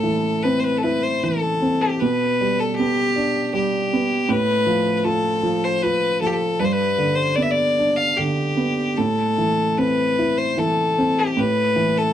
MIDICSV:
0, 0, Header, 1, 3, 480
1, 0, Start_track
1, 0, Tempo, 781250
1, 1236, Time_signature, 3, 2, 24, 8
1, 1709, Tempo, 763359
1, 4589, Tempo, 805369
1, 6509, Tempo, 782269
1, 7458, End_track
2, 0, Start_track
2, 0, Title_t, "Fiddle"
2, 0, Program_c, 0, 110
2, 0, Note_on_c, 0, 69, 67
2, 263, Note_on_c, 0, 71, 66
2, 272, Note_off_c, 0, 69, 0
2, 368, Note_on_c, 0, 72, 46
2, 377, Note_off_c, 0, 71, 0
2, 393, Note_on_c, 0, 71, 60
2, 402, Note_off_c, 0, 72, 0
2, 475, Note_on_c, 0, 69, 44
2, 484, Note_off_c, 0, 71, 0
2, 508, Note_on_c, 0, 71, 67
2, 517, Note_off_c, 0, 69, 0
2, 634, Note_on_c, 0, 72, 62
2, 643, Note_off_c, 0, 71, 0
2, 759, Note_on_c, 0, 69, 61
2, 769, Note_off_c, 0, 72, 0
2, 1114, Note_on_c, 0, 67, 60
2, 1123, Note_off_c, 0, 69, 0
2, 1227, Note_on_c, 0, 71, 69
2, 1236, Note_off_c, 0, 67, 0
2, 1593, Note_on_c, 0, 69, 65
2, 1602, Note_off_c, 0, 71, 0
2, 1689, Note_on_c, 0, 67, 77
2, 1698, Note_off_c, 0, 69, 0
2, 2178, Note_off_c, 0, 67, 0
2, 2187, Note_on_c, 0, 67, 69
2, 2656, Note_on_c, 0, 71, 87
2, 2666, Note_off_c, 0, 67, 0
2, 3085, Note_off_c, 0, 71, 0
2, 3085, Note_on_c, 0, 71, 53
2, 3131, Note_on_c, 0, 69, 75
2, 3141, Note_off_c, 0, 71, 0
2, 3506, Note_on_c, 0, 72, 67
2, 3515, Note_off_c, 0, 69, 0
2, 3621, Note_on_c, 0, 71, 73
2, 3630, Note_off_c, 0, 72, 0
2, 3861, Note_off_c, 0, 71, 0
2, 3865, Note_on_c, 0, 69, 70
2, 3902, Note_on_c, 0, 67, 57
2, 3912, Note_off_c, 0, 69, 0
2, 3941, Note_on_c, 0, 69, 67
2, 3950, Note_off_c, 0, 67, 0
2, 4107, Note_on_c, 0, 71, 74
2, 4116, Note_off_c, 0, 69, 0
2, 4137, Note_on_c, 0, 72, 58
2, 4147, Note_off_c, 0, 71, 0
2, 4189, Note_on_c, 0, 71, 77
2, 4199, Note_off_c, 0, 72, 0
2, 4458, Note_on_c, 0, 72, 67
2, 4467, Note_off_c, 0, 71, 0
2, 4582, Note_on_c, 0, 74, 73
2, 4592, Note_off_c, 0, 72, 0
2, 4626, Note_on_c, 0, 76, 63
2, 4635, Note_off_c, 0, 74, 0
2, 4675, Note_on_c, 0, 74, 73
2, 4684, Note_off_c, 0, 76, 0
2, 4947, Note_on_c, 0, 77, 72
2, 4956, Note_off_c, 0, 74, 0
2, 5071, Note_on_c, 0, 67, 66
2, 5080, Note_off_c, 0, 77, 0
2, 5546, Note_on_c, 0, 69, 74
2, 5555, Note_off_c, 0, 67, 0
2, 6029, Note_on_c, 0, 71, 73
2, 6038, Note_off_c, 0, 69, 0
2, 6385, Note_on_c, 0, 72, 70
2, 6394, Note_off_c, 0, 71, 0
2, 6511, Note_on_c, 0, 69, 64
2, 6520, Note_off_c, 0, 72, 0
2, 6880, Note_on_c, 0, 67, 65
2, 6889, Note_off_c, 0, 69, 0
2, 7000, Note_on_c, 0, 71, 76
2, 7010, Note_off_c, 0, 67, 0
2, 7364, Note_on_c, 0, 69, 68
2, 7373, Note_off_c, 0, 71, 0
2, 7458, Note_off_c, 0, 69, 0
2, 7458, End_track
3, 0, Start_track
3, 0, Title_t, "Upright piano"
3, 0, Program_c, 1, 0
3, 0, Control_c, 1, 64, 127
3, 0, Note_on_c, 1, 45, 45
3, 21, Note_on_c, 1, 52, 40
3, 277, Note_on_c, 1, 60, 40
3, 515, Note_on_c, 1, 64, 45
3, 749, Note_off_c, 1, 52, 0
3, 758, Note_on_c, 1, 52, 39
3, 987, Note_off_c, 1, 60, 0
3, 996, Note_on_c, 1, 60, 41
3, 1210, Note_off_c, 1, 45, 0
3, 1213, Note_off_c, 1, 64, 0
3, 1221, Note_off_c, 1, 52, 0
3, 1228, Note_off_c, 1, 60, 0
3, 1240, Note_on_c, 1, 47, 50
3, 1244, Control_c, 1, 64, 0
3, 1353, Control_c, 1, 64, 127
3, 1479, Note_on_c, 1, 55, 39
3, 1715, Note_on_c, 1, 59, 45
3, 1947, Note_on_c, 1, 62, 47
3, 2173, Note_off_c, 1, 55, 0
3, 2183, Note_on_c, 1, 55, 44
3, 2423, Note_off_c, 1, 59, 0
3, 2433, Note_on_c, 1, 59, 46
3, 2640, Note_off_c, 1, 47, 0
3, 2640, Note_off_c, 1, 62, 0
3, 2645, Note_off_c, 1, 55, 0
3, 2656, Note_on_c, 1, 45, 55
3, 2659, Note_off_c, 1, 59, 0
3, 2670, Control_c, 1, 64, 0
3, 2769, Control_c, 1, 64, 127
3, 2894, Note_on_c, 1, 53, 42
3, 3132, Note_on_c, 1, 65, 46
3, 3367, Note_off_c, 1, 53, 0
3, 3376, Note_on_c, 1, 53, 46
3, 3618, Note_off_c, 1, 65, 0
3, 3627, Note_on_c, 1, 65, 44
3, 3861, Note_off_c, 1, 53, 0
3, 3871, Note_on_c, 1, 53, 43
3, 4080, Note_off_c, 1, 45, 0
3, 4094, Note_off_c, 1, 65, 0
3, 4102, Note_off_c, 1, 53, 0
3, 4108, Note_on_c, 1, 43, 51
3, 4117, Control_c, 1, 64, 0
3, 4216, Control_c, 1, 64, 127
3, 4350, Note_on_c, 1, 50, 39
3, 4596, Note_on_c, 1, 59, 42
3, 4839, Note_on_c, 1, 62, 39
3, 5072, Note_off_c, 1, 50, 0
3, 5081, Note_on_c, 1, 50, 39
3, 5299, Note_off_c, 1, 59, 0
3, 5308, Note_on_c, 1, 59, 39
3, 5526, Note_off_c, 1, 43, 0
3, 5536, Note_off_c, 1, 62, 0
3, 5543, Note_off_c, 1, 50, 0
3, 5543, Note_off_c, 1, 59, 0
3, 5554, Note_on_c, 1, 45, 44
3, 5558, Control_c, 1, 64, 0
3, 5659, Control_c, 1, 64, 127
3, 5792, Note_on_c, 1, 52, 40
3, 6032, Note_on_c, 1, 60, 40
3, 6274, Note_on_c, 1, 64, 44
3, 6495, Note_off_c, 1, 52, 0
3, 6504, Note_on_c, 1, 52, 40
3, 6746, Note_off_c, 1, 60, 0
3, 6755, Note_on_c, 1, 60, 42
3, 6972, Note_off_c, 1, 45, 0
3, 6973, Note_off_c, 1, 64, 0
3, 6976, Note_off_c, 1, 52, 0
3, 6988, Note_off_c, 1, 60, 0
3, 6991, Note_on_c, 1, 45, 53
3, 7002, Control_c, 1, 64, 0
3, 7129, Control_c, 1, 64, 127
3, 7231, Note_on_c, 1, 52, 43
3, 7454, Note_off_c, 1, 45, 0
3, 7458, Note_off_c, 1, 52, 0
3, 7458, End_track
0, 0, End_of_file